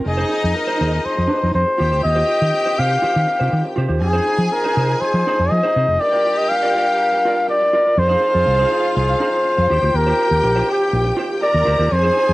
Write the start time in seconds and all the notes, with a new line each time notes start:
0.05 F1 F3 C4 D#4 G#4 D#5, muted clean electric guitar stroke
0.17 D#4 G#4 C5
0.29 D#4 G#4 C5
0.44 F2, muted clean electric guitar stroke
0.55 A#4, muted clean electric guitar stroke
0.67 D#4 G#4 C5
0.79 D#2 D#4 G#4 C5
0.92 muted clean electric guitar stroke
1.05 C5, muted fingered electric bass stroke
1.15 F2, muted clean electric guitar stroke
1.28 D#4 G#4 C5
1.41 F2, muted clean electric guitar stroke
1.53 F2 C5, muted clean electric guitar stroke
1.66 muted clean electric guitar stroke
1.78 D#2 D#3 F4 G4 C5 G5
1.92 D2 F4 G4 C5
2.03 D#2 D#5, muted clean electric guitar stroke
2.15 F4 G4 C5
2.28 F4 G4 C5
2.41 D#3, muted clean electric guitar stroke
2.54 muted clean electric guitar stroke
2.66 F4 G4 C5
2.78 C3 F4 G4 C5 F5
2.91 muted clean electric guitar stroke
3.02 F4 G4 C5, muted fingered electric bass stroke
3.15 D#3, muted clean electric guitar stroke
3.27 muted clean electric guitar stroke
3.40 C3 F4 G4 C5
3.52 D#3, muted clean electric guitar stroke
3.65 muted clean electric guitar stroke
3.76 C3 F4 G4 C5
3.89 D#2 F4 G4 C5
4.01 F2 F3 D#4 G#4 G#5, muted clean electric guitar stroke
4.13 D#4 G#4 C5
4.26 D#4 G#4 C5
4.38 F3, muted clean electric guitar stroke
4.52 A#4, muted clean electric guitar stroke
4.64 D#4 G#4 C5
4.76 C3 D#4 G#4 C5
4.90 muted clean electric guitar stroke
5.01 C5, muted fingered electric bass stroke
5.14 F3, muted clean electric guitar stroke
5.27 D#4 G#4 C5
5.39 F2, muted clean electric guitar stroke
5.50 F3 D#5, muted clean electric guitar stroke
5.63 D#4 G#4 C5
5.76 C3 D#4 G#4 C5
5.88 F1, muted clean electric guitar stroke
6.00 G3 D4 F4 G4 A#4 D5 G5, muted clean electric guitar stroke
6.13 F4 A#4 D5
6.26 F4 A#4 D5
6.38 D#5, muted clean electric guitar stroke
6.49 F5, muted clean electric guitar stroke
6.63 F4 A#4 D5
6.75 F4 A#4 D5
6.87 muted clean electric guitar stroke
7.12 muted clean electric guitar stroke
7.25 F4 A#4 D5
7.37 muted clean electric guitar stroke
7.48 D5, muted clean electric guitar stroke
7.61 muted clean electric guitar stroke
7.73 F4 A#4 D5
7.86 F4 A#4 D5
7.97 F2 F3 C4 D#4 F4 G#4 C5 F5, muted clean electric guitar stroke
8.08 D#4 G#4 C5
8.20 D#4 G#4 C5
8.34 F2, muted clean electric guitar stroke
8.45 C2, muted clean electric guitar stroke
8.59 D#4 G#4 C5
8.71 D#4 G#4 C5
8.83 muted clean electric guitar stroke
8.97 C2 C5
9.09 muted clean electric guitar stroke
9.20 D#4 G#4 C5
9.33 muted clean electric guitar stroke
9.45 muted clean electric guitar stroke
9.57 F2, muted clean electric guitar stroke
9.70 D#2 D#3 F4 G4 C5 G5
9.82 D2 F4 G4 C5
9.94 D#2 A#4, muted clean electric guitar stroke
10.06 F4 G4 C5
10.19 F4 G4 C5
10.31 D#2, muted clean electric guitar stroke
10.43 A#1, muted clean electric guitar stroke
10.55 F4 G4 C5
10.68 F4 G4 C5
10.80 muted clean electric guitar stroke
10.93 A#1, muted clean electric guitar stroke
11.04 muted clean electric guitar stroke
11.17 F4 G4 C5
11.28 muted clean electric guitar stroke
11.41 A#4 D5 A#5, muted clean electric guitar stroke
11.53 D#2, muted clean electric guitar stroke
11.65 D2 F4 G4 C5
11.79 D#2 F4 G4 C5
11.91 F2 F3 C4 D#4 G#4 C5 G#5, muted clean electric guitar stroke
12.03 D#4 G#4 C5
12.16 D#4 G#4 C5
12.29 F2, muted clean electric guitar stroke